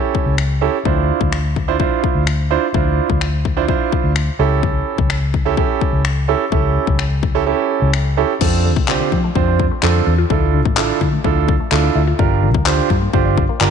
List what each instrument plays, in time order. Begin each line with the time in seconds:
Already playing: grand piano C#4 E4 G4 A4
0.15 kick
0.26 fingered electric bass C#2
0.38 finger snap
0.61 grand piano C#4 E4 G4 A4
0.85 fingered electric bass D2, grand piano D4 E4 F4 C5, kick
1.21 fingered electric bass D2, kick
1.32 finger snap
1.56 kick
1.68 grand piano D4 E4 F4 C5
1.80 grand piano D4 E4 F4 C5, kick
2.04 kick
2.15 fingered electric bass D2
2.27 finger snap
2.51 grand piano D4 E4 F4 C5
2.74 fingered electric bass D2, grand piano D4 E4 F4 C5, kick
3.10 fingered electric bass D2, kick
3.21 finger snap
3.45 kick
3.57 grand piano D4 E4 F4 C5
3.68 grand piano D4 E4 F4 C5, kick
3.92 kick
4.04 fingered electric bass D2
4.16 finger snap
4.39 fingered electric bass C#2, grand piano C#4 E4 G4 A4
4.63 kick
4.98 fingered electric bass C#2, kick
5.10 finger snap
5.34 kick
5.45 grand piano C#4 E4 G4 A4
5.57 grand piano C#4 E4 G4 A4, kick
5.81 kick
5.93 fingered electric bass C#2
6.05 finger snap
6.28 grand piano C#4 E4 G4 A4
6.52 fingered electric bass C#2, grand piano C#4 E4 G4 A4, kick
6.87 fingered electric bass C#2, kick
6.99 finger snap
7.23 kick
7.35 grand piano C#4 E4 G4 A4
7.46 grand piano C#4 E4 G4 A4
7.82 fingered electric bass C#2
7.94 finger snap
8.17 grand piano C#4 E4 G4 A4
8.41 fingered electric bass F2, synth arpeggio sound D3, grand piano C4 D4 F4 A4, kick, crash
8.65 synth arpeggio sound D3
8.76 fingered electric bass C2, synth arpeggio sound A3, kick
8.88 synth arpeggio sound D3, grand piano C4 D4 F4 G4, clap
9.00 synth arpeggio sound D3
9.12 fingered electric bass F3, synth arpeggio sound C4, kick
9.24 synth arpeggio sound A3
9.35 fingered electric bass F2, synth arpeggio sound D3, grand piano C4 D4 F4 C5, kick
9.48 synth arpeggio sound D3
9.59 kick
9.71 synth arpeggio sound A3
9.83 fingered electric bass F2, synth arpeggio sound D3, grand piano C4 D4 F4 A4, clap
9.95 synth arpeggio sound D3
10.07 fingered electric bass E2, synth arpeggio sound C4
10.18 synth arpeggio sound F4
10.30 fingered electric bass D2, synth arpeggio sound D3, grand piano D4 E4 F4 A4, kick
10.54 synth arpeggio sound D3
10.65 fingered electric bass A1, synth arpeggio sound A3, kick
10.77 synth arpeggio sound D3, grand piano D4 E4 F4 A4, clap
10.89 synth arpeggio sound D3
11.01 fingered electric bass D3, synth arpeggio sound E4, kick
11.13 synth arpeggio sound A3
11.24 fingered electric bass D2, synth arpeggio sound D3, grand piano D4 E4 F4 A4, kick
11.36 synth arpeggio sound D3
11.49 kick
11.60 synth arpeggio sound A3
11.71 fingered electric bass D2, synth arpeggio sound D3, grand piano D4 E4 F4 A4, clap
11.84 synth arpeggio sound D3
11.95 fingered electric bass D2, synth arpeggio sound E4
12.07 synth arpeggio sound F4
12.19 fingered electric bass G1, synth arpeggio sound D3, grand piano D4 F4 G4 A#4, kick
12.43 synth arpeggio sound D3
12.54 fingered electric bass D2, synth arpeggio sound A#3, kick
12.66 synth arpeggio sound D3, grand piano D4 F4 G4 C5, clap
12.78 synth arpeggio sound D3
12.90 fingered electric bass G2, synth arpeggio sound F4, kick
13.02 synth arpeggio sound A#3
13.13 fingered electric bass G1, synth arpeggio sound D3, grand piano D4 F4 G4 C5, kick
13.25 synth arpeggio sound D3
13.37 kick
13.49 synth arpeggio sound A#3
13.61 fingered electric bass G1, synth arpeggio sound D3, grand piano D4 F4 G4 A#4, clap